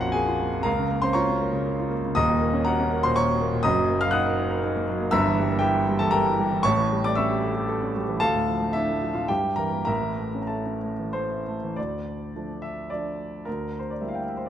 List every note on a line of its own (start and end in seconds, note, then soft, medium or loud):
0.00 0.61 A#1 medium
0.00 0.02 F2 medium
0.00 0.23 F2 medium
0.00 0.15 A#3 medium
0.00 0.68 C#4 medium
0.00 0.28 F4 medium
0.00 0.14 F#4 medium
0.00 0.64 A#4 medium
0.00 0.68 C#5 medium
0.00 0.64 F5 medium
0.00 0.14 F#5 medium
0.00 0.63 A#5 loud
0.12 0.36 A#3 medium
0.12 0.63 G#4 medium
0.12 0.65 G#5 loud
0.28 0.49 F4 medium
0.41 0.62 A#3 medium
0.54 0.67 F2 medium
0.63 2.13 C#2 medium
0.63 1.00 A#4 medium
0.63 1.00 F5 medium
0.63 1.02 A#5 loud
0.79 0.98 C#3 medium
0.91 1.11 A#3 medium
1.02 1.23 C#4 medium
1.02 1.15 C5 medium
1.02 1.15 C6 loud
1.13 1.36 F4 medium
1.13 1.87 C#5 medium
1.13 1.88 A#5 medium
1.13 1.91 C#6 loud
1.29 1.49 C#4 medium
1.41 1.62 A#3 medium
1.53 1.74 C#3 medium
1.66 1.87 A#3 medium
1.80 2.00 F4 medium
1.91 2.12 A#3 medium
2.04 2.17 C#3 medium
2.15 3.60 D#1 medium
2.15 3.60 D#2 medium
2.15 2.62 D#5 medium
2.15 2.62 A#5 medium
2.15 2.65 D#6 loud
2.30 2.49 A#2 medium
2.42 2.61 A#3 medium
2.53 2.73 C#4 medium
2.65 2.86 F#4 medium
2.65 3.00 A#4 medium
2.65 3.00 F#5 medium
2.65 3.02 A#5 loud
2.80 2.99 C#4 medium
2.92 3.11 A#3 medium
3.03 3.23 A#2 medium
3.03 3.15 C5 medium
3.03 3.15 C6 loud
3.16 3.36 A#3 medium
3.16 3.62 C#5 medium
3.16 3.62 A#5 medium
3.16 3.65 C#6 loud
3.30 3.48 F#4 medium
3.42 3.60 A#3 medium
3.53 3.65 A#2 medium
3.63 5.09 F#1 medium
3.63 5.09 F#2 medium
3.63 3.99 D#5 medium
3.63 3.99 A#5 medium
3.63 4.01 D#6 loud
3.78 3.97 F#3 medium
3.90 4.09 A#3 medium
4.01 4.21 F#3 medium
4.01 4.13 F5 medium
4.01 4.13 F6 loud
4.11 4.33 D#4 medium
4.11 4.84 F#5 medium
4.11 4.84 D#6 medium
4.11 4.87 F#6 loud
4.26 4.46 A#4 medium
4.39 4.59 D#4 medium
4.51 4.71 A#4 medium
4.64 4.84 D#4 medium
4.76 4.96 A#3 medium
4.89 5.08 F#3 medium
5.01 5.13 A#3 medium
5.11 6.59 G1 medium
5.11 6.59 G2 medium
5.11 5.58 E5 loud
5.11 5.58 A#5 loud
5.11 5.61 E6 loud
5.26 5.45 E3 medium
5.39 5.58 G3 medium
5.51 5.70 A#3 medium
5.59 5.82 E4 medium
5.59 5.96 G4 medium
5.59 5.96 E5 medium
5.59 5.98 G5 loud
5.75 5.95 A#3 medium
5.89 6.08 G3 medium
5.99 6.20 E3 medium
5.99 6.11 A4 medium
5.99 6.12 A5 loud
6.11 6.33 G3 medium
6.11 6.59 A#4 medium
6.11 6.59 G5 medium
6.11 6.62 A#5 loud
6.27 6.46 E4 medium
6.39 6.59 G3 medium
6.52 6.64 E3 medium
6.63 8.17 A1 medium
6.63 8.17 A2 medium
6.63 7.00 C#5 medium
6.63 7.00 A5 medium
6.63 7.02 C#6 loud
6.77 6.98 E3 medium
6.92 7.12 G3 medium
7.04 7.25 A3 medium
7.04 7.16 D5 medium
7.04 7.17 D6 loud
7.15 7.38 C#4 medium
7.15 7.91 E5 medium
7.15 7.91 C#6 medium
7.15 7.94 E6 loud
7.31 7.51 G4 medium
7.44 7.64 A4 medium
7.57 7.77 G4 medium
7.69 7.89 A4 medium
7.83 8.03 C#4 medium
7.96 8.16 G3 medium
8.09 8.21 E3 medium
8.20 9.27 D2 medium
8.20 8.70 A4 medium
8.20 8.70 F5 medium
8.20 8.73 A5 loud
8.35 8.55 A2 medium
8.49 8.69 F3 medium
8.61 8.82 A3 medium
8.73 8.96 D4 medium
8.73 9.12 E4 medium
8.73 9.13 A4 medium
8.73 9.15 E5 medium
8.89 9.10 A3 medium
9.02 9.24 F3 medium
9.14 9.29 A2 soft
9.14 9.28 F4 soft
9.14 9.28 F5 medium
9.28 9.87 G2 medium
9.28 9.56 G4 medium
9.28 9.56 E5 medium
9.28 9.58 G5 medium
9.44 9.67 G3 soft
9.56 9.82 E3 medium
9.56 9.85 A#4 medium
9.56 9.83 A#5 medium
9.73 9.88 A#3 medium
9.85 11.72 A1 medium
9.85 11.73 A2 medium
9.85 10.39 A#4 medium
9.85 10.39 E5 medium
9.85 10.41 A#5 medium
10.02 10.29 E3 soft
10.19 10.45 A3 soft
10.35 10.61 C#4 soft
10.42 10.51 A#5 medium
10.47 10.77 E4 soft
10.47 11.10 A4 soft
10.47 11.10 E5 soft
10.47 11.13 A5 medium
10.66 10.92 C#4 soft
10.84 11.09 A3 soft
11.00 11.25 E3 soft
11.13 11.40 A3 soft
11.13 11.76 C5 medium
11.31 11.56 E4 soft
11.48 11.72 A3 soft
11.64 11.78 E3 soft
11.76 12.33 D2 medium
11.76 12.62 D5 medium
12.36 12.88 F3 soft
12.36 12.88 A3 soft
12.36 12.88 D4 soft
12.62 12.91 E5 medium
12.90 13.43 F3 soft
12.90 13.43 A3 soft
12.90 13.44 D4 soft
12.90 13.46 D5 medium
13.45 14.02 D2 medium
13.45 13.79 A#4 medium
13.79 13.93 C5 medium
13.90 14.02 D5 medium
14.01 14.49 G3 soft
14.01 14.49 A#3 soft
14.01 14.49 E4 soft
14.01 14.10 E5 medium
14.09 14.17 F5 medium
14.15 14.24 G5 medium
14.22 14.31 F5 soft
14.29 14.39 E5 soft
14.37 14.48 C5 medium
14.46 14.49 D5 medium